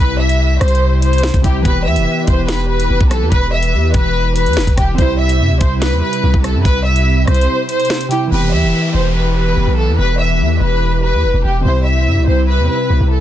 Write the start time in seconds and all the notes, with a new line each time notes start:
Already playing: C3 G3 C4 E4 G4
0.00 C2 B4
0.19 E5
0.29 closed hi-hat
0.61 C2 C5, cross-stick, closed hi-hat
0.68 closed hi-hat
0.75 closed hi-hat
1.02 C5, closed hi-hat
1.13 closed hi-hat
1.18 closed hi-hat
1.23 snare, closed hi-hat
1.29 closed hi-hat
1.34 C2, kick, closed hi-hat
1.42 C2 C3 G3 E4 G4, kick, closed hi-hat
1.61 E3 B3
1.65 E1 E3 G4 B4, kick, closed hi-hat
1.86 E2 E5
1.96 E1, closed hi-hat
2.27 E1 C5, kick, closed hi-hat
2.48 B4, snare, closed hi-hat
2.69 B4
2.80 closed hi-hat
2.90 E1
3.01 B1, kick
3.10 A4, cross-stick, closed hi-hat
3.21 E2
3.32 E1 B4, kick, closed hi-hat
3.53 E5
3.63 closed hi-hat
3.73 E2
3.94 E1 B4, kick, closed hi-hat
4.36 B4, closed hi-hat
4.46 E2, closed hi-hat
4.53 E1, snare, closed hi-hat
4.60 closed hi-hat
4.67 E1, kick, closed hi-hat
4.77 E1 G4, kick, cross-stick, closed hi-hat
4.94 C2 C3 G3 C4 E4 C5, kick, closed hi-hat
5.01 E4
5.19 E5
5.29 closed hi-hat
5.40 G2
5.50 C2
5.61 C2 C5, kick, closed hi-hat
5.82 B4, snare, closed hi-hat
5.92 E2
6.02 B4
6.13 closed hi-hat
6.23 C2
6.34 C2, kick
6.44 A4, cross-stick, closed hi-hat
6.55 G2
6.65 C2 B4, kick, closed hi-hat
6.86 E5
6.96 closed hi-hat
7.27 C2 C5, cross-stick, closed hi-hat
7.34 closed hi-hat
7.41 closed hi-hat
7.69 C5, closed hi-hat
7.80 closed hi-hat
7.85 closed hi-hat
7.90 snare, closed hi-hat
7.95 closed hi-hat
8.01 closed hi-hat
8.09 C3 G3 E4 G4, closed hi-hat
8.27 E3 B3
8.32 E1 E3 E4 G4 B4, downlifter
8.53 E2 E5
8.63 E1
8.94 E1 C5
9.15 B4
9.36 B4
9.57 E1
9.67 B1
9.77 A4
9.88 E2
9.98 E1 B4
10.19 E5
10.40 E2
10.61 E1 B4
11.03 B4
11.13 E2
11.23 E1
11.34 E1
11.44 E1 G4
11.61 C2 C3 G3 C4 E4 C5
11.68 E4
11.86 E5
12.07 G2
12.17 C2
12.27 C2 C5
12.48 B4
12.59 E2
12.69 B4
12.90 C2
13.00 C2
13.11 A4